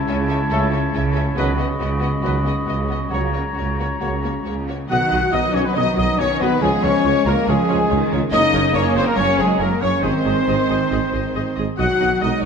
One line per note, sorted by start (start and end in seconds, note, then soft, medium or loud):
0.00 1.38 E4 medium
0.00 1.33 C#5 medium
0.00 1.34 A5 medium
0.07 0.46 C#2 medium
0.07 0.46 C#3 medium
0.07 0.18 C#4 medium
0.07 0.15 A4 medium
0.07 0.16 E5 medium
0.28 0.38 C#4 medium
0.28 0.36 A4 medium
0.28 0.38 E5 medium
0.50 0.89 C#2 medium
0.50 0.66 C#3 medium
0.50 0.90 C#3 medium
0.50 0.66 A3 medium
0.50 0.59 C#4 medium
0.50 0.67 C#4 medium
0.50 0.67 E4 medium
0.50 0.58 A4 medium
0.50 0.66 A4 medium
0.50 0.60 E5 medium
0.71 0.82 C#4 medium
0.71 0.79 A4 medium
0.71 0.81 E5 medium
0.93 1.32 C#2 medium
0.93 1.32 C#3 medium
0.93 1.03 C#4 medium
0.93 1.01 A4 medium
0.93 1.03 E5 medium
1.13 1.24 C#4 medium
1.13 1.21 A4 medium
1.13 1.23 E5 medium
1.36 1.75 C#2 medium
1.36 1.75 C#3 medium
1.36 1.52 D#3 medium
1.36 1.52 F#3 medium
1.36 1.45 B3 medium
1.36 1.52 B3 medium
1.36 1.44 F#4 medium
1.36 4.67 F#4 medium
1.36 1.52 F#4 medium
1.36 1.52 B4 medium
1.36 3.12 D#5 medium
1.36 1.46 D#5 medium
1.36 3.08 B5 medium
1.57 1.66 B3 medium
1.57 1.65 F#4 medium
1.57 1.67 D#5 medium
1.79 2.18 C#2 medium
1.79 2.17 C#3 medium
1.79 1.89 B3 medium
1.79 1.87 F#4 medium
1.79 1.89 D#5 medium
2.01 2.09 B3 medium
2.01 2.09 F#4 medium
2.01 2.10 D#5 medium
2.22 2.61 C#2 medium
2.22 2.62 C#3 medium
2.22 2.38 D#3 medium
2.22 2.37 F#3 medium
2.22 2.38 B3 medium
2.22 2.31 B3 medium
2.22 2.30 F#4 medium
2.22 2.38 F#4 medium
2.22 2.38 B4 medium
2.22 2.33 D#5 medium
2.44 2.52 B3 medium
2.44 2.53 F#4 medium
2.44 2.54 D#5 medium
2.66 3.06 C#2 medium
2.66 3.06 C#3 medium
2.66 2.74 B3 medium
2.66 2.75 F#4 medium
2.66 2.76 D#5 medium
2.88 2.98 B3 medium
2.88 2.96 F#4 soft
2.88 2.99 D#5 medium
3.09 3.51 C#2 medium
3.09 3.27 C#3 medium
3.09 3.51 C#3 medium
3.09 3.27 F#3 medium
3.09 3.19 A#3 medium
3.09 3.28 A#3 medium
3.09 3.17 F#4 medium
3.09 3.28 F#4 medium
3.09 4.67 C#5 medium
3.09 3.27 C#5 medium
3.09 3.21 C#5 medium
3.09 4.65 A#5 medium
3.32 3.42 A#3 medium
3.32 3.40 F#4 soft
3.32 3.42 C#5 soft
3.55 3.96 C#2 medium
3.55 3.96 C#3 medium
3.55 3.66 A#3 medium
3.55 3.63 F#4 soft
3.55 3.66 C#5 medium
3.78 3.88 A#3 soft
3.78 3.86 F#4 medium
3.78 3.88 C#5 medium
4.00 4.40 C#2 medium
4.00 4.16 C#3 medium
4.00 4.41 C#3 medium
4.00 4.16 F#3 medium
4.00 4.17 A#3 medium
4.00 4.10 A#3 medium
4.00 4.08 F#4 soft
4.00 4.17 F#4 medium
4.00 4.09 C#5 medium
4.00 4.17 C#5 medium
4.22 4.32 A#3 soft
4.22 4.30 F#4 soft
4.22 4.32 C#5 medium
4.44 4.84 C#2 medium
4.44 4.85 C#3 medium
4.44 4.55 A#3 soft
4.44 4.52 F#4 soft
4.44 4.53 C#5 medium
4.68 4.76 A#3 medium
4.68 4.76 F#4 soft
4.68 4.77 C#5 medium
4.89 4.98 B1 medium
4.89 5.30 D#3 medium
4.89 5.31 D#3 medium
4.89 5.30 B3 medium
4.89 4.99 F#4 medium
4.89 5.31 F#4 medium
4.89 4.98 D#5 medium
4.89 5.30 F#5 medium
4.89 5.30 F#5 loud
4.89 5.31 F#5 medium
4.89 5.30 F#6 medium
5.11 5.20 B1 medium
5.11 5.20 F#4 medium
5.11 5.19 D#5 medium
5.32 5.42 B1 medium
5.32 5.41 B1 medium
5.32 5.75 D#3 medium
5.32 6.18 F#3 medium
5.32 5.75 B3 medium
5.32 5.54 D#4 loud
5.32 5.41 F#4 medium
5.32 5.56 D#5 medium
5.32 5.54 D#5 medium
5.32 5.41 D#5 medium
5.32 5.54 D#5 medium
5.32 5.55 D#5 medium
5.32 5.56 D#6 medium
5.53 5.62 B1 medium
5.53 5.63 B1 medium
5.53 5.65 C#4 medium
5.53 5.63 F#4 medium
5.53 5.65 C#5 medium
5.53 5.67 C#5 medium
5.53 5.60 C#5 medium
5.53 5.63 D#5 medium
5.53 5.68 C#6 medium
5.65 5.76 B3 medium
5.65 5.76 B4 medium
5.65 5.77 B4 medium
5.65 5.76 B4 medium
5.65 5.71 B4 medium
5.65 5.76 B5 medium
5.75 5.84 B1 medium
5.75 6.60 D#3 medium
5.75 6.61 B3 medium
5.75 5.96 D#4 loud
5.75 5.84 F#4 medium
5.75 5.96 D#5 medium
5.75 5.96 D#5 loud
5.75 5.84 D#5 medium
5.75 5.86 D#5 medium
5.75 5.98 D#5 medium
5.75 5.97 D#6 medium
5.97 6.06 B1 medium
5.97 6.07 B1 medium
5.97 6.18 D#4 loud
5.97 6.05 F#4 medium
5.97 6.20 D#5 medium
5.97 6.05 D#5 medium
5.97 6.19 D#5 medium
5.97 6.20 D#5 medium
5.97 6.21 D#6 medium
6.18 6.28 B1 medium
6.18 6.27 B1 medium
6.18 6.62 D#3 medium
6.18 6.40 C#4 loud
6.18 6.27 F#4 medium
6.18 6.40 C#5 medium
6.18 6.41 C#5 medium
6.18 6.40 C#5 medium
6.18 6.40 C#5 loud
6.18 6.27 D#5 medium
6.18 6.41 C#6 medium
6.40 6.49 B1 medium
6.40 6.62 B3 loud
6.40 6.49 F#4 medium
6.40 6.62 B4 medium
6.40 6.49 D#5 medium
6.40 6.63 B5 medium
6.61 6.69 C#2 medium
6.61 6.71 C#2 medium
6.61 7.05 F3 medium
6.61 7.47 F3 medium
6.61 6.83 G#3 loud
6.61 7.47 G#3 medium
6.61 6.71 F4 medium
6.61 6.84 G#4 loud
6.61 6.72 G#4 loud
6.61 6.84 G#4 medium
6.61 6.86 G#4 medium
6.61 6.71 C#5 medium
6.61 6.84 G#5 medium
6.83 6.91 C#2 medium
6.83 6.92 C#2 medium
6.83 7.26 C#4 loud
6.83 6.93 F4 medium
6.83 7.26 C#5 medium
6.83 7.26 C#5 loud
6.83 7.27 C#5 medium
6.83 7.26 C#5 medium
6.83 6.92 C#5 medium
6.83 7.25 C#6 medium
7.04 7.12 C#2 medium
7.04 7.14 C#2 medium
7.04 7.47 G#3 medium
7.04 7.13 F4 medium
7.04 7.13 C#5 medium
7.25 7.33 C#2 medium
7.25 7.35 C#2 medium
7.25 7.47 A#3 loud
7.25 7.35 F4 medium
7.25 7.48 A#4 medium
7.25 7.47 A#4 loud
7.25 7.48 A#4 medium
7.25 7.35 C#5 medium
7.25 7.31 A#5 loud
7.47 7.56 C#2 medium
7.47 7.57 C#2 loud
7.47 7.89 F3 medium
7.47 8.31 G#3 medium
7.47 8.12 G#3 medium
7.47 7.57 F4 medium
7.47 8.11 G#4 medium
7.47 8.10 G#4 medium
7.47 8.12 G#4 medium
7.47 8.11 G#4 medium
7.47 7.57 C#5 medium
7.47 8.10 G#5 medium
7.69 7.77 C#2 medium
7.69 7.78 C#2 medium
7.69 7.77 F4 medium
7.69 7.77 C#5 medium
7.89 7.99 C#2 medium
7.89 8.33 D#3 medium
7.89 8.32 D#3 medium
7.89 7.97 F4 medium
7.89 7.98 C#5 medium
8.11 8.19 C#2 medium
8.11 8.20 C#2 medium
8.11 8.21 F4 medium
8.11 8.20 C#5 medium
8.31 8.40 F#1 medium
8.31 8.41 F#1 loud
8.31 8.73 C#3 medium
8.31 8.74 C#3 medium
8.31 8.72 A#3 medium
8.31 8.73 D#4 loud
8.31 8.40 A#4 medium
8.31 8.41 C#5 medium
8.31 8.72 D#5 loud
8.31 8.77 D#6 loud
8.53 8.61 F#1 medium
8.53 8.62 F#1 medium
8.53 8.62 A#4 medium
8.53 8.62 C#5 medium
8.73 8.82 F#1 medium
8.73 8.84 F#1 medium
8.73 9.16 C#3 medium
8.73 9.16 A#3 medium
8.73 9.18 A#3 loud
8.73 8.97 C#4 loud
8.73 8.83 A#4 medium
8.73 8.95 C#5 medium
8.73 8.96 C#5 medium
8.73 8.97 C#5 loud
8.73 8.83 C#5 medium
8.73 8.98 C#5 medium
8.73 8.96 C#6 loud
8.95 9.03 F#1 loud
8.95 9.05 F#1 medium
8.95 9.07 C4 loud
8.95 9.05 A#4 medium
8.95 9.06 C5 loud
8.95 9.07 C5 loud
8.95 9.06 C5 medium
8.95 9.05 C#5 medium
8.95 9.09 C6 loud
9.06 9.18 A#3 loud
9.06 9.17 A#4 medium
9.06 9.17 A#4 loud
9.06 9.17 A#4 medium
9.06 9.18 A#4 medium
9.06 9.18 A#5 medium
9.15 9.25 F#1 medium
9.15 9.26 F#1 medium
9.15 9.60 C#3 medium
9.15 10.04 F#3 loud
9.15 9.59 A#3 medium
9.15 9.39 C#4 loud
9.15 9.25 A#4 medium
9.15 9.37 C#5 loud
9.15 9.24 C#5 medium
9.15 9.39 C#5 loud
9.15 9.24 C#6 loud
9.38 9.47 F#1 medium
9.38 9.48 F#1 medium
9.38 9.61 G#3 loud
9.38 9.60 G#4 medium
9.38 9.46 G#4 medium
9.38 9.60 G#4 medium
9.38 9.63 G#4 medium
9.38 9.47 A#4 medium
9.38 9.47 C#5 medium
9.38 9.60 G#5 medium
9.58 9.68 F#1 medium
9.58 10.03 C#3 medium
9.58 10.03 A#3 medium
9.58 9.83 A#3 medium
9.58 9.81 A#4 medium
9.58 9.68 A#4 medium
9.58 9.82 A#4 medium
9.58 9.68 A#4 medium
9.58 9.83 A#4 medium
9.58 9.68 C#5 medium
9.58 9.81 A#5 medium
9.80 9.90 F#1 medium
9.80 10.04 C#4 loud
9.80 9.90 A#4 medium
9.80 10.02 C#5 medium
9.80 10.03 C#5 medium
9.80 10.01 C#5 medium
9.80 9.90 C#5 medium
9.80 10.04 C#5 medium
9.80 9.87 C#6 medium
10.01 10.11 G#1 medium
10.01 10.12 G#1 medium
10.01 11.54 D#3 medium
10.01 11.57 D#3 medium
10.01 11.57 G#3 medium
10.01 10.11 G#4 medium
10.01 11.53 C5 medium
10.01 11.54 C5 medium
10.01 10.11 D#5 medium
10.01 11.54 C6 medium
10.05 11.55 C4 loud
10.25 10.34 G#1 medium
10.25 10.33 G#1 medium
10.25 10.33 G#4 medium
10.25 10.34 D#5 medium
10.47 10.56 G#1 medium
10.47 10.55 G#1 medium
10.47 10.56 G#4 medium
10.47 10.57 D#5 medium
10.69 10.77 G#1 medium
10.69 10.78 G#1 medium
10.69 10.77 G#4 medium
10.69 10.77 D#5 medium
10.90 10.99 G#1 medium
10.90 11.00 G#4 medium
10.90 11.00 D#5 medium
11.13 11.22 G#1 medium
11.13 11.22 G#4 medium
11.13 11.22 D#5 medium
11.35 11.43 G#1 medium
11.35 11.44 G#1 medium
11.35 11.44 G#4 medium
11.35 11.44 D#5 medium
11.57 11.66 G#1 medium
11.57 11.65 G#1 medium
11.57 11.66 G#4 medium
11.57 11.65 D#5 medium
11.78 11.87 B1 medium
11.78 11.88 B1 medium
11.78 12.45 D#3 medium
11.78 12.45 F#3 medium
11.78 12.20 F#3 medium
11.78 12.20 F#4 loud
11.78 11.87 F#4 medium
11.78 11.87 D#5 medium
11.78 12.19 F#5 loud
11.78 12.19 F#5 medium
11.78 12.20 F#5 medium
11.78 12.19 F#6 medium
12.01 12.09 B1 medium
12.01 12.09 F#4 medium
12.01 12.09 D#5 medium
12.21 12.31 B1 medium
12.21 12.30 B1 medium
12.21 12.45 G#3 medium
12.21 12.44 D#4 medium
12.21 12.30 F#4 medium
12.21 12.43 D#5 medium
12.21 12.30 D#5 medium
12.21 12.43 D#5 medium
12.21 12.31 D#5 medium
12.21 12.42 D#6 medium